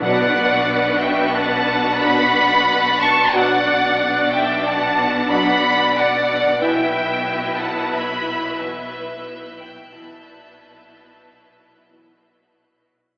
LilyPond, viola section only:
\new Staff \with { instrumentName = "Viola section" } { \time 5/4 \key b \minor \tempo 4 = 91 <d' b'>1~ <d' b'>4 | <d' d''>1~ <d' d''>4 | <e' b'>1~ <e' b'>4 | <e' b'>1~ <e' b'>8 r8 | }